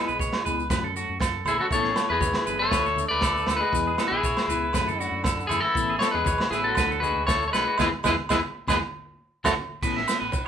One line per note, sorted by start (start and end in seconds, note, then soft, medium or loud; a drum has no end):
0.00 0.68 G#3 medium
0.00 0.11 B3 soft
0.00 0.68 G#4 medium
0.00 0.68 B4 medium
0.08 0.30 B1 medium
0.08 0.19 B4 medium
0.08 maracas soft
0.19 0.44 C#5 medium
0.19 kick medium
0.19 low conga medium
0.19 maracas medium
0.33 snare medium
0.33 low agogo medium
0.44 0.68 C#2 medium
0.44 0.61 B3 soft
0.44 0.61 E4 medium
0.44 0.60 G#4 medium
0.44 0.69 B4 medium
0.44 muted conga soft
0.44 low conga medium
0.44 maracas medium
0.60 maracas soft
0.70 1.04 F#2 medium
0.70 0.86 F#3 medium
0.70 0.86 A3 medium
0.70 0.86 C#4 medium
0.70 0.86 A4 medium
0.70 0.83 B4 medium
0.70 kick medium
0.70 snare medium
0.70 muted conga soft
0.70 high conga medium
0.70 low agogo medium
0.70 maracas medium
0.84 0.95 A4 medium
0.94 1.12 A3 soft
0.94 1.12 C#4 soft
0.94 1.20 F#4 medium
0.94 1.11 A4 soft
0.94 muted conga soft
0.94 maracas medium
1.09 1.41 F#2 medium
1.20 1.45 A4 medium
1.20 kick medium
1.20 snare medium
1.20 high conga medium
1.20 low agogo medium
1.20 maracas medium
1.45 1.58 A#1 medium
1.45 1.59 E3 medium
1.45 1.63 A3 soft
1.45 1.62 C#4 soft
1.45 1.60 E4 medium
1.45 1.59 G#4 medium
1.45 1.58 A4 medium
1.45 1.62 A4 soft
1.45 high conga medium
1.45 low agogo medium
1.45 maracas medium
1.59 1.65 F#3 medium
1.59 1.71 F#4 medium
1.59 1.66 F#4 medium
1.59 1.66 A4 medium
1.70 1.93 A1 medium
1.70 1.87 E3 medium
1.70 2.07 A3 medium
1.70 1.87 B3 medium
1.70 1.88 C#4 medium
1.70 1.88 A4 medium
1.70 2.09 A4 medium
1.70 2.08 C#5 medium
1.70 kick medium
1.70 maracas medium
1.83 1.94 G#4 medium
1.83 snare soft
1.95 2.13 B3 soft
1.95 2.12 A4 medium
1.95 muted clean electric guitar stroke medium
1.95 snare medium
1.95 low agogo medium
1.95 maracas medium
2.09 2.32 E2 medium
2.09 2.57 E3 medium
2.09 2.58 G#4 medium
2.09 2.21 B4 medium
2.09 2.61 B4 medium
2.21 2.45 C#5 medium
2.21 kick medium
2.21 high conga medium
2.21 maracas medium
2.34 snare medium
2.34 low agogo medium
2.34 maracas soft
2.46 2.69 F#1 loud
2.46 2.64 B3 soft
2.46 2.63 C#4 soft
2.46 2.62 A4 soft
2.46 2.70 B4 medium
2.46 muted conga soft
2.46 maracas medium
2.58 3.06 A3 medium
2.58 3.08 A4 medium
2.58 3.08 C#5 medium
2.71 3.06 D2 medium
2.71 2.88 F#3 medium
2.71 2.88 A3 medium
2.71 2.88 D4 medium
2.71 2.89 A4 medium
2.71 2.84 B4 medium
2.71 kick medium
2.71 snare medium
2.71 low agogo medium
2.71 maracas medium
2.86 2.97 A4 medium
2.86 maracas soft
2.96 3.14 A3 soft
2.96 3.14 D4 soft
2.96 3.14 A4 soft
2.96 muted conga soft
2.96 high conga medium
2.96 maracas medium
3.08 3.44 D2 medium
3.08 3.58 A3 medium
3.08 3.55 B4 medium
3.08 3.56 D5 loud
3.21 3.47 A4 medium
3.21 kick medium
3.21 snare medium
3.21 high conga medium
3.21 low agogo medium
3.21 maracas medium
3.37 maracas soft
3.47 3.59 D2 medium
3.47 3.65 A3 soft
3.47 3.64 D4 soft
3.47 3.64 A4 medium
3.47 3.61 A4 medium
3.47 snare medium
3.47 low agogo medium
3.47 maracas medium
3.56 4.08 G#3 medium
3.56 4.07 G#4 medium
3.56 4.06 B4 medium
3.63 3.74 F#4 medium
3.71 3.96 E2 medium
3.71 3.88 E3 medium
3.71 3.89 B3 medium
3.71 3.89 E4 medium
3.71 3.89 G#4 medium
3.71 kick medium
3.71 maracas medium
3.87 3.99 G#4 medium
3.97 4.15 B3 soft
3.97 4.14 E4 soft
3.97 4.14 G#4 medium
3.97 4.12 A4 medium
3.97 snare medium
3.97 low agogo medium
3.97 maracas medium
4.08 4.34 B1 medium
4.08 5.01 E3 medium
4.08 5.06 G#4 medium
4.12 5.47 E4 medium
4.12 4.24 B4 medium
4.23 4.49 C#5 medium
4.23 kick medium
4.23 low conga medium
4.23 maracas medium
4.37 snare medium
4.37 low agogo medium
4.37 maracas soft
4.48 4.71 C#2 medium
4.48 4.65 B3 soft
4.48 4.64 E4 soft
4.48 4.64 G#4 soft
4.48 4.73 B4 medium
4.48 muted conga soft
4.48 low conga medium
4.48 maracas medium
4.73 5.08 F#2 medium
4.73 4.90 F#3 medium
4.73 4.90 A3 medium
4.73 4.90 C#4 medium
4.73 4.90 A4 medium
4.73 4.87 B4 medium
4.73 kick medium
4.73 snare medium
4.73 muted conga soft
4.73 high conga medium
4.73 low agogo medium
4.73 maracas medium
4.88 4.99 A4 medium
4.88 maracas soft
4.99 5.46 D3 medium
4.99 5.16 A3 soft
4.99 5.15 C#4 soft
4.99 5.24 F#4 medium
4.99 muted conga soft
4.99 maracas medium
5.06 5.46 F#4 medium
5.11 5.45 F#2 medium
5.24 5.48 A4 medium
5.24 kick medium
5.24 snare medium
5.24 high conga medium
5.24 low agogo medium
5.24 maracas loud
5.40 maracas soft
5.47 5.61 F#2 medium
5.47 5.62 E3 medium
5.47 5.66 C#4 soft
5.47 5.60 E4 medium
5.47 5.61 G#4 medium
5.47 5.63 A4 medium
5.47 5.66 A4 medium
5.47 high conga medium
5.47 low agogo medium
5.51 5.67 A3 soft
5.51 maracas medium
5.60 5.97 E3 medium
5.60 5.99 E4 medium
5.60 5.75 F#4 medium
5.60 6.01 A4 medium
5.74 5.98 A1 medium
5.74 5.91 E3 medium
5.74 5.91 B3 medium
5.74 5.92 C#4 medium
5.74 5.92 A4 medium
5.74 kick medium
5.74 maracas medium
5.90 6.01 G#4 medium
5.98 6.11 A3 medium
5.98 6.17 C#4 soft
5.98 6.17 A4 medium
5.98 6.11 C#5 medium
5.98 snare medium
5.98 low agogo medium
6.02 6.18 B3 soft
6.02 6.14 A4 medium
6.02 maracas medium
6.11 6.37 E2 medium
6.11 6.47 G#3 medium
6.11 6.50 G#4 medium
6.11 6.48 B4 medium
6.11 6.26 B4 medium
6.25 6.51 C#5 medium
6.25 kick medium
6.25 high conga medium
6.25 maracas medium
6.38 snare medium
6.38 low agogo medium
6.48 6.74 A1 medium
6.48 6.61 E3 medium
6.48 6.64 G#4 medium
6.48 muted conga soft
6.52 6.69 B3 soft
6.52 6.68 C#4 soft
6.52 6.66 E4 medium
6.52 6.68 A4 soft
6.52 6.76 B4 medium
6.52 snare soft
6.52 maracas medium
6.61 6.98 F#3 medium
6.61 7.00 A4 medium
6.68 7.02 F#4 medium
6.75 7.11 D2 medium
6.75 6.92 F#3 medium
6.75 6.93 A3 medium
6.75 6.93 D4 medium
6.75 6.93 A4 medium
6.75 6.90 B4 medium
6.75 kick medium
6.75 snare medium
6.75 low agogo medium
6.75 maracas medium
6.91 7.02 A4 medium
6.91 maracas soft
7.00 7.26 G#3 medium
7.00 7.19 D4 soft
7.00 7.27 F#4 medium
7.00 7.27 G#4 medium
7.00 7.18 A4 soft
7.00 7.26 B4 medium
7.00 muted conga soft
7.00 high conga medium
7.00 maracas medium
7.04 7.19 A3 soft
7.15 7.48 D2 medium
7.27 7.45 A3 medium
7.27 7.52 A4 medium
7.27 7.46 A4 medium
7.27 7.46 C#5 medium
7.27 kick medium
7.27 snare medium
7.27 high conga medium
7.27 low agogo medium
7.27 maracas medium
7.42 maracas soft
7.48 7.76 G#3 medium
7.48 7.50 A3 medium
7.48 7.53 C#5 medium
7.53 7.65 B1 medium
7.53 7.70 A3 soft
7.53 7.69 D4 soft
7.53 7.78 G#4 medium
7.53 7.69 A4 soft
7.53 7.67 A4 medium
7.53 7.77 B4 medium
7.53 snare medium
7.53 low agogo medium
7.53 maracas medium
7.68 7.79 F#4 medium
7.78 7.89 E2 medium
7.78 7.85 G#3 medium
7.78 7.88 G#3 medium
7.78 7.88 B3 medium
7.78 7.88 E4 medium
7.78 7.89 E4 medium
7.78 7.88 G#4 medium
7.78 7.89 G#4 medium
7.78 7.88 B4 medium
7.78 7.89 B4 medium
7.78 kick medium
7.78 snare medium
7.78 high conga loud
7.78 low agogo medium
7.78 maracas medium
8.04 8.15 E2 medium
8.04 8.10 G#3 medium
8.04 8.14 G#3 medium
8.04 8.13 B3 medium
8.04 8.13 E4 medium
8.04 8.14 E4 medium
8.04 8.14 G#4 medium
8.04 8.14 B4 medium
8.04 kick medium
8.04 snare medium
8.04 high conga medium
8.04 low agogo loud
8.04 maracas medium
8.29 8.40 E2 medium
8.29 8.38 G#3 medium
8.29 8.36 G#3 medium
8.29 8.38 B3 medium
8.29 8.38 E4 medium
8.29 8.39 E4 medium
8.29 8.40 E4 medium
8.29 8.39 G#4 medium
8.29 8.39 B4 medium
8.29 kick medium
8.29 snare medium
8.29 high conga medium
8.29 low agogo medium
8.29 maracas medium
8.68 8.78 E2 medium
8.68 8.76 G#3 medium
8.68 8.75 G#3 medium
8.68 8.76 B3 medium
8.68 8.76 E4 medium
8.68 8.77 E4 medium
8.68 8.78 E4 medium
8.68 8.76 G#4 medium
8.68 8.78 G#4 medium
8.68 8.77 B4 medium
8.68 8.78 B4 medium
8.68 kick medium
8.68 snare medium
8.68 high conga medium
8.68 low agogo medium
8.68 maracas medium
9.44 9.54 F#1 medium
9.44 9.51 A3 medium
9.44 9.53 A3 medium
9.44 9.53 C#4 medium
9.44 9.53 F#4 medium
9.44 9.52 A4 medium
9.44 9.53 A4 medium
9.44 9.53 C#5 medium
9.44 9.54 C#5 medium
9.44 kick medium
9.44 snare medium
9.44 high conga loud
9.44 low agogo medium
9.44 maracas medium
9.81 10.04 A1 medium
9.81 9.98 E3 medium
9.81 9.98 B3 medium
9.81 9.99 C#4 medium
9.81 9.99 A4 medium
9.81 9.95 B4 medium
9.81 kick medium
9.81 crash medium
9.81 muted conga soft
9.81 maracas medium
9.96 10.20 E5 medium
9.96 snare soft
10.08 10.24 B3 soft
10.08 10.24 C#4 medium
10.08 10.23 A4 medium
10.08 snare medium
10.08 low agogo medium
10.08 maracas loud
10.20 10.32 A1 medium
10.20 10.45 B4 medium
10.32 kick medium
10.32 high conga medium
10.32 maracas medium